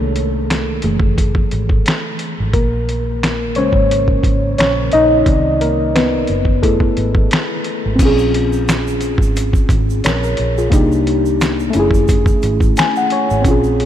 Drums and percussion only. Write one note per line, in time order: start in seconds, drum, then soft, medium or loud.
0.16 closed hi-hat medium
0.50 finger snap medium
0.50 snare medium
0.50 closed hi-hat medium
0.82 closed hi-hat medium
1.00 kick medium
1.18 kick medium
1.18 closed hi-hat medium
1.35 kick medium
1.51 closed hi-hat soft
1.69 kick medium
1.86 finger snap medium
1.86 snare loud
1.86 closed hi-hat medium
2.19 closed hi-hat medium
2.53 kick loud
2.53 closed hi-hat medium
2.89 closed hi-hat medium
3.23 finger snap medium
3.23 snare medium
3.23 closed hi-hat medium
3.55 closed hi-hat medium
3.72 kick medium
3.91 closed hi-hat medium
4.08 kick medium
4.23 kick medium
4.23 closed hi-hat medium
4.58 finger snap medium
4.58 snare loud
4.58 closed hi-hat medium
4.92 closed hi-hat medium
5.26 kick loud
5.26 closed hi-hat medium
5.61 closed hi-hat medium
5.96 finger snap medium
5.96 snare medium
5.96 closed hi-hat medium
6.27 closed hi-hat soft
6.45 kick medium
6.63 kick medium
6.63 closed hi-hat medium
6.80 kick medium
6.97 closed hi-hat soft
7.15 kick loud
7.31 finger snap loud
7.31 snare loud
7.31 closed hi-hat medium
7.64 closed hi-hat medium
7.99 kick loud
7.99 closed hi-hat medium
7.99 crash loud
7.99 shaker medium
8.18 shaker soft
8.34 closed hi-hat medium
8.53 shaker medium
8.69 finger snap medium
8.69 snare medium
8.69 closed hi-hat medium
8.69 shaker medium
8.87 shaker medium
9.01 closed hi-hat medium
9.01 shaker medium
9.18 kick medium
9.22 shaker medium
9.36 closed hi-hat loud
9.36 shaker medium
9.53 kick medium
9.53 shaker soft
9.69 kick loud
9.69 closed hi-hat medium
9.69 shaker medium
9.90 shaker soft
10.04 finger snap loud
10.04 snare loud
10.04 closed hi-hat medium
10.04 shaker medium
10.24 shaker medium
10.37 closed hi-hat medium
10.58 shaker medium
10.72 kick loud
10.72 closed hi-hat medium
10.72 shaker medium
10.92 shaker soft
11.07 closed hi-hat medium
11.26 shaker soft
11.41 finger snap medium
11.41 snare medium
11.41 closed hi-hat medium
11.41 shaker medium
11.60 shaker soft
11.73 closed hi-hat medium
11.73 shaker soft
11.91 kick medium
11.91 shaker medium
12.08 kick loud
12.08 closed hi-hat medium
12.08 shaker medium
12.26 kick loud
12.26 shaker soft
12.42 closed hi-hat medium
12.42 shaker medium
12.60 kick medium
12.60 shaker soft
12.77 finger snap loud
12.77 snare loud
12.77 closed hi-hat medium
12.77 shaker medium
12.96 shaker soft
13.10 closed hi-hat medium
13.30 shaker soft
13.45 kick loud
13.45 closed hi-hat medium
13.45 shaker medium
13.64 shaker soft
13.80 closed hi-hat medium